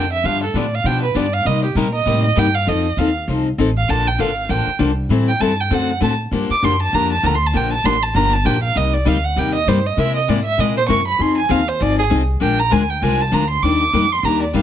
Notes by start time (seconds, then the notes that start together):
Already playing: F2 G5
0.13 E5
0.24 G2 D3 F3 B3 D4 G4 F5
0.44 A4
0.54 A2 D3 F3 B3 D4 G4 D5
0.75 F5
0.84 B2 D3 F3 B3 D4 G4 G5
1.03 B4
1.15 G2 D3 F3 B3 D4 G4 D5
1.33 F5
1.45 C3 G3 A#3 D#4 G4 D#5
1.65 G4
1.75 A#2 C3 G3 A#3 D#4 G4 A#4
1.95 D#5
2.06 A2 C3 G3 A#3 D#4 G4
2.25 D#5
2.36 G2 C3 G3 A#3 D#4 G4 G5
2.55 F5
2.66 F2 F3 C4 D#4 A4 D#5
2.97 D#2 F3 C4 D#4 A4 F5
3.28 C2 F3 C4 D#4 A4
3.58 A1 F3 C4 D#4 A4
3.77 F5
3.88 A#1 D3 F3 A#3 D4 A4 A5
4.07 G5
4.18 G#1 D3 F3 A#3 D4 A4 F5
4.49 A1 D3 F3 A#3 D4 A4 G5
4.67 muted upright bass stroke
4.79 C2 D3 F3 A#3 D4 A4
5.09 A2 E3 G3 C4 E4 A4
5.28 G5
5.40 G2 E3 G3 C4 E4 A4 A5
5.61 G5
5.71 F#2 D3 A3 C4 F#4 A4 F#5
6.00 A2 D3 A3 C4 F#4 A4 A5
6.31 G2 D3 F3 A#3 D4 G4
6.49 D6, muted upright bass stroke
6.62 F#2 D3 F3 A#3 D4 G4 C6
6.82 A5
6.93 F2 D3 F3 A#3 D4 G4 A#5
7.12 A5
7.23 D2 D3 F3 A#3 D4 G4 A#5
7.35 C6
7.46 A5
7.53 A#1 D3 F3 A#3 D4 G4 G5
7.73 A5
7.84 A1 D3 F3 A#3 D4 G4 C6
8.03 A5
8.15 G1 D3 F3 A#3 D4 G4 A#5
8.33 A5
8.45 A#1 D3 F3 A#3 D4 G4 G5
8.64 F5
8.75 C2 C3 G3 A#3 D#4 G4 D#5
8.94 D5
9.05 D2 C3 G3 A#3 D#4 G4 F5
9.24 F#5
9.36 D#2 C3 G3 A#3 D#4 G4 G5
9.55 D#5
9.66 G2 C3 G3 A#3 D#4 G4 C5
9.86 D#5
9.97 C3 G#3 A#3 E4 A#4 E5
10.16 D#5
10.28 G#2 C3 G#3 A#3 E4 A#4 D5
10.45 E5
10.58 A#2 C3 G#3 A#3 E4 A#4 D#5
10.77 C5
10.88 F#2 C3 G#3 A#3 E4 A#4 C#6
11.08 B5
11.18 F2 F3 C4 D#4 G#4 C6
11.38 G#5
11.49 D#2 F3 C4 D#4 G#4 F5
11.69 C5
11.80 G#1 F3 C4 D#4 G#4 D5
11.99 G#4
12.10 C2 F3 C4 D#4 G#4
12.40 A#1 F3 G#3 D4 F4 A#4 G5
12.59 A#5
12.70 D2 F3 G#3 D4 F4 A#4 G#5
12.90 G5
13.02 C2 F3 G#3 D4 F4 A#4 G#5
13.21 A5
13.32 D2 F3 G#3 D4 F4 A#4 A#5
13.50 C6
13.62 D#2 D#3 G3 A#3 D4 G4 D6
13.93 F2 D#3 G3 A#3 D4 G4
14.12 C6
14.23 D#2 D#3 G3 A#3 D4 G4 A#5
14.43 D5
14.53 G2 D#3 G3 A#3 D4 G4 F5